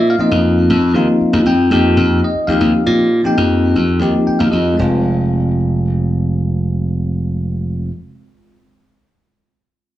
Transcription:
Already playing: A#2
0.10 F5
0.18 F3 A#3 C4 D#4 F4 D#5, muted slap bass stroke
0.31 F2
0.70 F2
0.94 D#2 F3 A#3 C4 D#4 F4
1.21 muted slap bass stroke
1.33 D#2
1.46 F2 G5
1.71 F2 F3 A#3 C4 D#4 G4
1.97 F2
2.24 D#5
2.35 muted slap bass stroke
2.47 D#2 F3 A#3 C4 D#4 G4 F5
2.61 D#2
2.86 A#2
3.23 F3 A#3 C4 D#4 G4 G5, muted slap bass stroke
3.37 F2
3.76 F2
4.00 D#2 F3 A#3 C4 D#4 G4
4.27 G5, muted slap bass stroke
4.39 D#2 F5
4.52 F2 D#5
4.74 G#3 C4
4.79 F1 F4

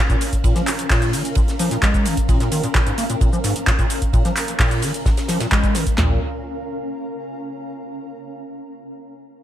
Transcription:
Already playing: C#4 A#4 F5 A#5
0.10 A#2, kick, closed hi-hat, ride, shaker
0.21 open hi-hat, ride, shaker
0.33 kick, closed hi-hat, shaker
0.44 A#2, kick, ride, shaker
0.55 F3, snare, closed hi-hat, shaker
0.67 clap, open hi-hat, ride, shaker
0.79 closed hi-hat, shaker
0.90 A#2, kick, snare, clap, open hi-hat, shaker
1.02 closed hi-hat, shaker
1.13 D#3, open hi-hat, ride, shaker
1.25 closed hi-hat, shaker
1.35 A#2, kick, ride, shaker
1.48 snare, closed hi-hat, shaker
1.59 F3, open hi-hat, ride, shaker
1.71 A#2, snare, closed hi-hat, shaker
1.83 G#3, kick, snare, clap, ride, shaker
1.94 kick, closed hi-hat, shaker
2.06 D#3, open hi-hat, ride, shaker
2.17 kick, closed hi-hat, shaker
2.29 A#2, kick, ride, shaker
2.40 A#2, snare, closed hi-hat, shaker
2.52 D#3, open hi-hat, ride, shaker
2.64 A#2, closed hi-hat, shaker
2.74 A#2, kick, snare, clap, ride, shaker
2.87 G#2, closed hi-hat, shaker
2.98 A#3, open hi-hat, ride, shaker
3.10 A#2, closed hi-hat, ride, shaker
3.21 A#2, kick, ride, shaker
3.33 F3, shaker
3.44 G#2, snare, open hi-hat, ride, shaker
3.56 closed hi-hat, shaker
3.67 A#2, kick, snare, clap, ride, shaker
3.79 A#2, kick, closed hi-hat, ride, shaker
3.90 open hi-hat, ride, shaker
4.02 kick, closed hi-hat, shaker
4.13 A#2, kick, ride, shaker
4.25 F3, snare, closed hi-hat, shaker
4.36 clap, open hi-hat, ride, shaker
4.48 closed hi-hat, shaker
4.59 A#2, kick, snare, clap, open hi-hat, shaker
4.71 closed hi-hat, shaker
4.82 D#3, open hi-hat, ride, shaker
4.94 closed hi-hat, shaker
5.06 A#2, kick, snare, ride, shaker
5.17 snare, closed hi-hat, ride, shaker
5.28 F3, snare, open hi-hat, ride, shaker
5.40 A#2, snare, closed hi-hat, ride, shaker
5.51 G#3, kick, snare, clap, ride, shaker
5.64 kick, closed hi-hat, shaker
5.75 D#3, snare, open hi-hat, ride, shaker
5.87 kick, closed hi-hat, shaker
5.98 A#1 A#2 C#4, snare, clap, floor tom
6.05 A#4
6.12 F5
6.19 A#5

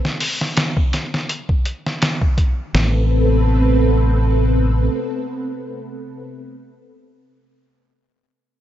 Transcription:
0.05 snare
0.20 open hi-hat
0.41 snare
0.57 snare, closed hi-hat
0.77 kick
0.93 snare, closed hi-hat
1.14 snare
1.29 closed hi-hat
1.49 kick
1.65 closed hi-hat
1.87 snare
2.02 snare, closed hi-hat
2.22 kick
2.38 kick, closed hi-hat
2.74 A1 C4 A4 B4, snare

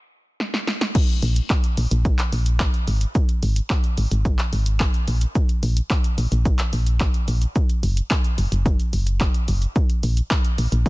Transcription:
0.40 snare
0.54 snare
0.67 snare
0.81 snare
0.95 kick, crash, shaker
1.09 closed hi-hat, shaker
1.22 A#1, open hi-hat, shaker
1.36 closed hi-hat, shaker
1.50 kick, clap, shaker
1.64 closed hi-hat, shaker
1.77 A#1, open hi-hat, shaker
1.91 A#1, closed hi-hat, shaker
2.05 kick, shaker
2.19 clap, closed hi-hat, shaker
2.32 A#1, open hi-hat, shaker
2.46 closed hi-hat, shaker
2.60 kick, clap, shaker
2.74 closed hi-hat, shaker
2.87 G#1, open hi-hat, shaker
3.01 closed hi-hat, shaker
3.15 kick, shaker
3.29 closed hi-hat, shaker
3.43 G#1, open hi-hat, shaker
3.56 closed hi-hat, shaker
3.70 kick, clap, shaker
3.84 closed hi-hat, shaker
3.97 G#1, open hi-hat, shaker
4.11 G#1, closed hi-hat, shaker
4.25 kick, shaker
4.39 clap, closed hi-hat, shaker
4.53 G#1, open hi-hat, shaker
4.66 closed hi-hat, shaker
4.80 kick, clap, shaker
4.94 closed hi-hat, shaker
5.08 A#1, open hi-hat, shaker
5.21 closed hi-hat, shaker
5.35 kick, shaker
5.49 closed hi-hat, shaker
5.63 A#1, open hi-hat, shaker
5.77 closed hi-hat, shaker
5.90 kick, clap, shaker
6.04 closed hi-hat, shaker
6.18 A#1, open hi-hat, shaker
6.32 A#1, closed hi-hat, shaker
6.45 kick, shaker
6.59 clap, closed hi-hat, shaker
6.73 A#1, open hi-hat, shaker
6.87 closed hi-hat, shaker
7.00 kick, clap, shaker
7.14 closed hi-hat, shaker
7.28 A#1, open hi-hat, shaker
7.42 closed hi-hat, shaker
7.56 kick, shaker
7.69 closed hi-hat, shaker
7.83 F#1, open hi-hat, shaker
7.97 closed hi-hat, shaker
8.11 kick, clap, shaker
8.24 closed hi-hat, shaker
8.38 F#1, open hi-hat, shaker
8.52 F#1, closed hi-hat, shaker
8.66 kick, shaker
8.80 closed hi-hat, shaker
8.93 F#1, open hi-hat, shaker
9.07 closed hi-hat, shaker
9.21 kick, clap, shaker
9.34 closed hi-hat, shaker
9.48 F#1, open hi-hat, shaker
9.62 closed hi-hat, shaker
9.76 kick, shaker
9.90 closed hi-hat, shaker
10.03 A#1, open hi-hat, shaker
10.17 closed hi-hat, shaker
10.31 kick, clap, shaker
10.45 closed hi-hat, shaker
10.58 A#1, open hi-hat, shaker
10.72 A#1, closed hi-hat, shaker
10.86 kick, shaker

